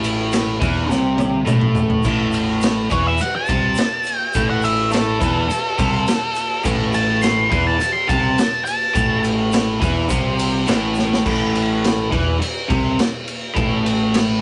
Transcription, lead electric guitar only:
2.92 C#5
3.07 E5
3.21 F#5
3.36 A5
4.16 G5
4.50 F#5
4.64 E5
4.92 A4
6.95 A5
7.22 C6
7.52 C6
7.67 A5
7.92 C6
8.09 A5
8.65 A5

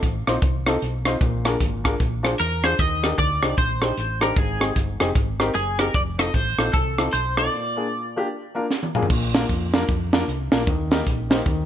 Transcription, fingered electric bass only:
0.03 A1
0.27 A#1
0.42 C2
0.82 B1
1.21 A#1
1.60 G#1
2.00 A#1
2.40 E2
2.79 D#2
3.18 D2
3.43 C2
3.58 A#1
3.98 A1
4.36 G#1
4.76 G1
5.01 F1
5.15 G#1
5.55 F#1
5.94 F1
6.34 A1
6.58 A#1
6.74 C2
7.13 B1
9.10 A#1
9.49 F2
9.89 F2
10.28 C2
10.53 A#1
10.67 D#2
11.07 A#1
11.46 D#2

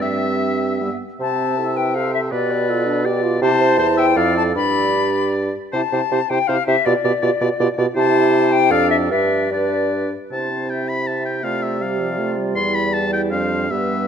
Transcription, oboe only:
0.02 E5
1.20 E5
2.31 B4
3.05 D5
3.42 C5
3.79 C5
3.97 E5
4.16 D5
4.54 D5
5.72 C5
5.92 C5
6.12 C5
6.31 C5
6.49 C5
6.67 C5
6.86 D5
7.04 D5
7.22 D5
7.41 D5
7.60 D5
7.78 D5
7.96 C5
8.71 D5
9.11 D5
9.53 D5
10.32 A5
10.70 G5
10.89 B5
11.07 A5
11.25 G5
11.44 F5
11.62 E5
11.81 F5
12.56 C6
12.75 B5
12.94 A5
13.13 G5
13.32 F5
13.71 E5

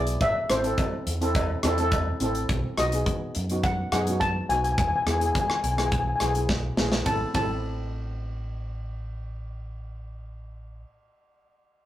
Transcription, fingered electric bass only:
Already playing: B1
0.20 A1
0.49 A1
1.06 E2
1.63 E2
2.20 A1
2.49 B1
2.78 B1
3.36 F#2
3.92 F#2
4.49 B1
4.78 E2
5.06 E2
5.63 B1
6.21 B1
6.78 A#1
7.06 A1
7.35 A1

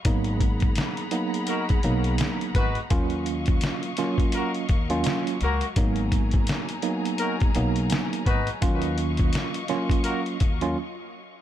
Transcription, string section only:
0.05 G#4 F#5 A#5 B5
2.91 F#3 D#5 F5 C#6
5.77 G#4 G#5 A#5
8.63 D#5 F5 C#6

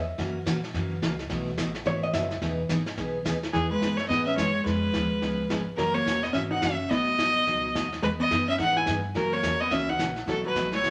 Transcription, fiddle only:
3.53 G#4
3.70 B4
3.97 C#5
4.08 D#5
4.26 E5
4.37 C#5
4.65 B4
5.76 A#4
5.94 C#5
6.23 D#5
6.33 E5
6.51 F#5
6.62 E5
6.90 D#5
8.03 B4
8.20 D#5
8.49 E5
8.60 F#5
8.77 G#5
9.16 A#4
9.33 C#5
9.61 D#5
9.71 E5
9.89 F#5
10.29 A4
10.46 B4
10.75 C#5

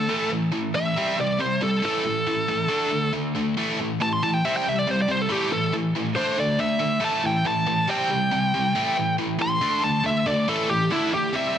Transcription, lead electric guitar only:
Already playing: A4
0.75 E5
1.21 D5
1.40 C5
1.63 A4
1.85 A4
4.02 A5
4.13 C6
4.23 A5
4.34 G5
4.45 E5
4.57 G5
4.69 E5
4.79 D5
4.91 C5
5.02 D5
5.11 C5
5.21 A4
5.32 G4
5.53 A4
6.16 C5
6.40 D5
6.61 E5
7.04 A5
7.26 G5
7.47 A5
7.90 G5
9.42 C6
9.84 A5
10.06 E5
10.27 D5
10.49 A4
10.69 G4
10.92 E4
11.14 G4
11.36 E5

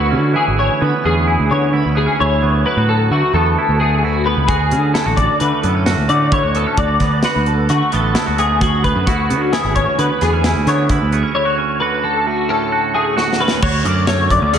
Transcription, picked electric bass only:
Already playing: D2
0.13 D3
0.48 G#1
0.82 D3
1.05 E2
1.40 D2
1.51 D3
1.86 D2
2.21 D2
2.43 D2
2.77 A2
3.11 D3
3.33 E2
3.69 D2
4.37 C#2
4.49 D2
4.72 D3
5.06 A1
5.41 D3
5.64 F#2
5.97 D2
6.09 D3
6.43 D2
6.78 D2
7.00 D2
7.36 D2
7.70 D3
7.94 A1
8.28 D2
8.96 F#2
9.07 D2
9.30 D3
9.64 G#1
9.98 D3
10.22 E2
10.55 D2
10.67 D3
11.02 D2
13.63 D2
13.85 F#2
14.42 D2
14.54 D2

